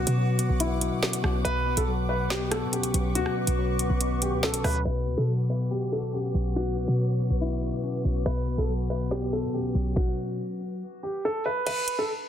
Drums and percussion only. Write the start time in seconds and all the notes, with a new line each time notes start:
0.07 closed hi-hat
0.39 closed hi-hat
0.60 closed hi-hat
0.81 closed hi-hat
1.03 snare
1.13 closed hi-hat
1.24 cross-stick
1.45 closed hi-hat
1.77 closed hi-hat
2.30 snare
2.51 cross-stick, closed hi-hat
2.73 closed hi-hat
2.83 closed hi-hat
2.94 closed hi-hat
3.15 closed hi-hat
3.26 cross-stick
3.47 closed hi-hat
3.79 closed hi-hat
4.01 closed hi-hat
4.22 closed hi-hat
4.43 snare
4.54 closed hi-hat
4.64 cross-stick, open hi-hat
5.07 closed hi-hat
5.50 closed hi-hat
5.71 closed hi-hat
6.03 closed hi-hat
6.35 closed hi-hat
6.56 closed hi-hat
6.77 closed hi-hat
7.20 closed hi-hat
7.41 closed hi-hat
7.48 closed hi-hat
7.55 closed hi-hat
7.62 closed hi-hat
7.84 closed hi-hat
8.26 closed hi-hat
8.47 closed hi-hat
8.90 closed hi-hat
9.11 snare
9.43 closed hi-hat
9.75 closed hi-hat
9.96 kick, snare
11.67 closed hi-hat, crash
11.88 closed hi-hat